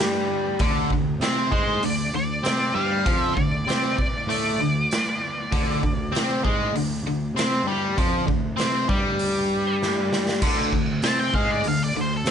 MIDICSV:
0, 0, Header, 1, 5, 480
1, 0, Start_track
1, 0, Key_signature, -1, "minor"
1, 0, Tempo, 613497
1, 470, Time_signature, 4, 2, 24, 8
1, 9630, End_track
2, 0, Start_track
2, 0, Title_t, "Lead electric guitar"
2, 0, Program_c, 0, 29
2, 1192, Note_on_c, 0, 72, 80
2, 1438, Note_off_c, 0, 72, 0
2, 1452, Note_on_c, 0, 74, 91
2, 1678, Note_off_c, 0, 74, 0
2, 1687, Note_on_c, 0, 74, 86
2, 2145, Note_on_c, 0, 77, 104
2, 2173, Note_off_c, 0, 74, 0
2, 2497, Note_off_c, 0, 77, 0
2, 2497, Note_on_c, 0, 76, 104
2, 2609, Note_on_c, 0, 74, 92
2, 2642, Note_off_c, 0, 76, 0
2, 3097, Note_off_c, 0, 74, 0
2, 3107, Note_on_c, 0, 74, 77
2, 7641, Note_off_c, 0, 74, 0
2, 8637, Note_on_c, 0, 81, 89
2, 8752, Note_off_c, 0, 81, 0
2, 8756, Note_on_c, 0, 79, 73
2, 8874, Note_off_c, 0, 79, 0
2, 8874, Note_on_c, 0, 77, 75
2, 8991, Note_off_c, 0, 77, 0
2, 9007, Note_on_c, 0, 74, 81
2, 9118, Note_off_c, 0, 74, 0
2, 9137, Note_on_c, 0, 77, 89
2, 9243, Note_off_c, 0, 77, 0
2, 9263, Note_on_c, 0, 74, 76
2, 9366, Note_off_c, 0, 74, 0
2, 9396, Note_on_c, 0, 72, 82
2, 9493, Note_off_c, 0, 72, 0
2, 9521, Note_on_c, 0, 69, 77
2, 9616, Note_off_c, 0, 69, 0
2, 9630, End_track
3, 0, Start_track
3, 0, Title_t, "Overdriven electric guitar"
3, 0, Program_c, 1, 29
3, 0, Note_on_c, 1, 55, 94
3, 469, Note_off_c, 1, 55, 0
3, 473, Note_on_c, 1, 50, 94
3, 704, Note_off_c, 1, 50, 0
3, 726, Note_on_c, 1, 50, 60
3, 910, Note_off_c, 1, 50, 0
3, 957, Note_on_c, 1, 60, 98
3, 1186, Note_off_c, 1, 60, 0
3, 1192, Note_on_c, 1, 56, 85
3, 1423, Note_off_c, 1, 56, 0
3, 1437, Note_on_c, 1, 50, 68
3, 1625, Note_off_c, 1, 50, 0
3, 1679, Note_on_c, 1, 50, 69
3, 1866, Note_off_c, 1, 50, 0
3, 1909, Note_on_c, 1, 60, 98
3, 2142, Note_off_c, 1, 60, 0
3, 2155, Note_on_c, 1, 55, 84
3, 2385, Note_off_c, 1, 55, 0
3, 2388, Note_on_c, 1, 53, 94
3, 2622, Note_off_c, 1, 53, 0
3, 2633, Note_on_c, 1, 50, 60
3, 2824, Note_off_c, 1, 50, 0
3, 2876, Note_on_c, 1, 60, 99
3, 3106, Note_off_c, 1, 60, 0
3, 3356, Note_on_c, 1, 57, 103
3, 3587, Note_off_c, 1, 57, 0
3, 3605, Note_on_c, 1, 50, 66
3, 3790, Note_off_c, 1, 50, 0
3, 4321, Note_on_c, 1, 50, 101
3, 4549, Note_off_c, 1, 50, 0
3, 4563, Note_on_c, 1, 50, 62
3, 4750, Note_off_c, 1, 50, 0
3, 4792, Note_on_c, 1, 60, 97
3, 5025, Note_off_c, 1, 60, 0
3, 5043, Note_on_c, 1, 56, 92
3, 5271, Note_off_c, 1, 56, 0
3, 5287, Note_on_c, 1, 50, 71
3, 5472, Note_off_c, 1, 50, 0
3, 5532, Note_on_c, 1, 50, 68
3, 5714, Note_off_c, 1, 50, 0
3, 5761, Note_on_c, 1, 60, 90
3, 5990, Note_off_c, 1, 60, 0
3, 6007, Note_on_c, 1, 55, 96
3, 6233, Note_off_c, 1, 55, 0
3, 6242, Note_on_c, 1, 53, 88
3, 6469, Note_off_c, 1, 53, 0
3, 6472, Note_on_c, 1, 50, 57
3, 6665, Note_off_c, 1, 50, 0
3, 6706, Note_on_c, 1, 60, 93
3, 6943, Note_off_c, 1, 60, 0
3, 6958, Note_on_c, 1, 55, 93
3, 8150, Note_off_c, 1, 55, 0
3, 8154, Note_on_c, 1, 50, 96
3, 8387, Note_off_c, 1, 50, 0
3, 8402, Note_on_c, 1, 50, 68
3, 8590, Note_off_c, 1, 50, 0
3, 8642, Note_on_c, 1, 60, 95
3, 8871, Note_off_c, 1, 60, 0
3, 8881, Note_on_c, 1, 56, 90
3, 9111, Note_off_c, 1, 56, 0
3, 9130, Note_on_c, 1, 50, 66
3, 9315, Note_off_c, 1, 50, 0
3, 9361, Note_on_c, 1, 50, 77
3, 9551, Note_off_c, 1, 50, 0
3, 9601, Note_on_c, 1, 60, 107
3, 9630, Note_off_c, 1, 60, 0
3, 9630, End_track
4, 0, Start_track
4, 0, Title_t, "Picked electric bass"
4, 0, Program_c, 2, 34
4, 0, Note_on_c, 2, 43, 84
4, 437, Note_off_c, 2, 43, 0
4, 468, Note_on_c, 2, 38, 94
4, 692, Note_off_c, 2, 38, 0
4, 704, Note_on_c, 2, 38, 67
4, 930, Note_off_c, 2, 38, 0
4, 938, Note_on_c, 2, 48, 84
4, 1166, Note_off_c, 2, 48, 0
4, 1183, Note_on_c, 2, 44, 83
4, 1409, Note_off_c, 2, 44, 0
4, 1426, Note_on_c, 2, 38, 69
4, 1651, Note_off_c, 2, 38, 0
4, 1669, Note_on_c, 2, 38, 77
4, 1892, Note_off_c, 2, 38, 0
4, 1902, Note_on_c, 2, 48, 95
4, 2129, Note_off_c, 2, 48, 0
4, 2154, Note_on_c, 2, 43, 92
4, 2375, Note_off_c, 2, 43, 0
4, 2394, Note_on_c, 2, 41, 89
4, 2615, Note_off_c, 2, 41, 0
4, 2632, Note_on_c, 2, 38, 76
4, 2855, Note_off_c, 2, 38, 0
4, 2866, Note_on_c, 2, 48, 95
4, 3091, Note_off_c, 2, 48, 0
4, 3342, Note_on_c, 2, 45, 90
4, 3569, Note_off_c, 2, 45, 0
4, 3584, Note_on_c, 2, 38, 79
4, 3810, Note_off_c, 2, 38, 0
4, 4321, Note_on_c, 2, 38, 91
4, 4540, Note_off_c, 2, 38, 0
4, 4557, Note_on_c, 2, 38, 79
4, 4778, Note_off_c, 2, 38, 0
4, 4785, Note_on_c, 2, 48, 85
4, 5012, Note_off_c, 2, 48, 0
4, 5041, Note_on_c, 2, 44, 89
4, 5260, Note_off_c, 2, 44, 0
4, 5271, Note_on_c, 2, 38, 75
4, 5495, Note_off_c, 2, 38, 0
4, 5504, Note_on_c, 2, 38, 78
4, 5731, Note_off_c, 2, 38, 0
4, 5746, Note_on_c, 2, 48, 98
4, 5973, Note_off_c, 2, 48, 0
4, 5977, Note_on_c, 2, 43, 91
4, 6208, Note_off_c, 2, 43, 0
4, 6238, Note_on_c, 2, 41, 92
4, 6459, Note_off_c, 2, 41, 0
4, 6481, Note_on_c, 2, 38, 73
4, 6701, Note_off_c, 2, 38, 0
4, 6716, Note_on_c, 2, 48, 97
4, 6938, Note_off_c, 2, 48, 0
4, 6955, Note_on_c, 2, 43, 87
4, 8124, Note_off_c, 2, 43, 0
4, 8152, Note_on_c, 2, 38, 86
4, 8377, Note_off_c, 2, 38, 0
4, 8391, Note_on_c, 2, 38, 76
4, 8616, Note_off_c, 2, 38, 0
4, 8622, Note_on_c, 2, 48, 91
4, 8852, Note_off_c, 2, 48, 0
4, 8865, Note_on_c, 2, 44, 85
4, 9093, Note_off_c, 2, 44, 0
4, 9110, Note_on_c, 2, 38, 76
4, 9336, Note_off_c, 2, 38, 0
4, 9346, Note_on_c, 2, 38, 70
4, 9574, Note_off_c, 2, 38, 0
4, 9583, Note_on_c, 2, 48, 98
4, 9630, Note_off_c, 2, 48, 0
4, 9630, End_track
5, 0, Start_track
5, 0, Title_t, "Drums"
5, 5, Note_on_c, 9, 38, 111
5, 83, Note_off_c, 9, 38, 0
5, 463, Note_on_c, 9, 46, 52
5, 469, Note_on_c, 9, 36, 113
5, 542, Note_off_c, 9, 46, 0
5, 547, Note_off_c, 9, 36, 0
5, 707, Note_on_c, 9, 36, 66
5, 785, Note_off_c, 9, 36, 0
5, 947, Note_on_c, 9, 46, 47
5, 959, Note_on_c, 9, 38, 90
5, 1026, Note_off_c, 9, 46, 0
5, 1037, Note_off_c, 9, 38, 0
5, 1190, Note_on_c, 9, 36, 76
5, 1268, Note_off_c, 9, 36, 0
5, 1429, Note_on_c, 9, 46, 51
5, 1508, Note_off_c, 9, 46, 0
5, 1914, Note_on_c, 9, 46, 54
5, 1926, Note_on_c, 9, 38, 113
5, 1993, Note_off_c, 9, 46, 0
5, 2004, Note_off_c, 9, 38, 0
5, 2395, Note_on_c, 9, 36, 112
5, 2401, Note_on_c, 9, 46, 50
5, 2474, Note_off_c, 9, 36, 0
5, 2480, Note_off_c, 9, 46, 0
5, 2636, Note_on_c, 9, 36, 75
5, 2714, Note_off_c, 9, 36, 0
5, 2884, Note_on_c, 9, 46, 53
5, 2896, Note_on_c, 9, 38, 98
5, 2963, Note_off_c, 9, 46, 0
5, 2974, Note_off_c, 9, 38, 0
5, 3118, Note_on_c, 9, 36, 76
5, 3196, Note_off_c, 9, 36, 0
5, 3364, Note_on_c, 9, 46, 51
5, 3443, Note_off_c, 9, 46, 0
5, 3843, Note_on_c, 9, 46, 55
5, 3854, Note_on_c, 9, 38, 109
5, 3921, Note_off_c, 9, 46, 0
5, 3933, Note_off_c, 9, 38, 0
5, 4322, Note_on_c, 9, 36, 118
5, 4328, Note_on_c, 9, 46, 60
5, 4401, Note_off_c, 9, 36, 0
5, 4406, Note_off_c, 9, 46, 0
5, 4563, Note_on_c, 9, 36, 77
5, 4641, Note_off_c, 9, 36, 0
5, 4811, Note_on_c, 9, 46, 49
5, 4823, Note_on_c, 9, 38, 101
5, 4889, Note_off_c, 9, 46, 0
5, 4901, Note_off_c, 9, 38, 0
5, 5043, Note_on_c, 9, 36, 79
5, 5122, Note_off_c, 9, 36, 0
5, 5285, Note_on_c, 9, 46, 46
5, 5364, Note_off_c, 9, 46, 0
5, 5770, Note_on_c, 9, 46, 56
5, 5781, Note_on_c, 9, 38, 110
5, 5848, Note_off_c, 9, 46, 0
5, 5860, Note_off_c, 9, 38, 0
5, 6243, Note_on_c, 9, 36, 112
5, 6244, Note_on_c, 9, 46, 52
5, 6321, Note_off_c, 9, 36, 0
5, 6322, Note_off_c, 9, 46, 0
5, 6480, Note_on_c, 9, 36, 82
5, 6558, Note_off_c, 9, 36, 0
5, 6715, Note_on_c, 9, 46, 54
5, 6727, Note_on_c, 9, 38, 94
5, 6793, Note_off_c, 9, 46, 0
5, 6805, Note_off_c, 9, 38, 0
5, 6956, Note_on_c, 9, 36, 88
5, 7035, Note_off_c, 9, 36, 0
5, 7192, Note_on_c, 9, 46, 57
5, 7270, Note_off_c, 9, 46, 0
5, 7687, Note_on_c, 9, 38, 60
5, 7765, Note_off_c, 9, 38, 0
5, 7923, Note_on_c, 9, 38, 84
5, 8001, Note_off_c, 9, 38, 0
5, 8048, Note_on_c, 9, 38, 80
5, 8126, Note_off_c, 9, 38, 0
5, 8151, Note_on_c, 9, 49, 111
5, 8153, Note_on_c, 9, 36, 107
5, 8230, Note_off_c, 9, 49, 0
5, 8231, Note_off_c, 9, 36, 0
5, 8392, Note_on_c, 9, 36, 74
5, 8471, Note_off_c, 9, 36, 0
5, 8623, Note_on_c, 9, 46, 52
5, 8635, Note_on_c, 9, 38, 101
5, 8702, Note_off_c, 9, 46, 0
5, 8713, Note_off_c, 9, 38, 0
5, 8870, Note_on_c, 9, 36, 82
5, 8948, Note_off_c, 9, 36, 0
5, 9105, Note_on_c, 9, 46, 52
5, 9183, Note_off_c, 9, 46, 0
5, 9589, Note_on_c, 9, 46, 58
5, 9601, Note_on_c, 9, 38, 120
5, 9630, Note_off_c, 9, 38, 0
5, 9630, Note_off_c, 9, 46, 0
5, 9630, End_track
0, 0, End_of_file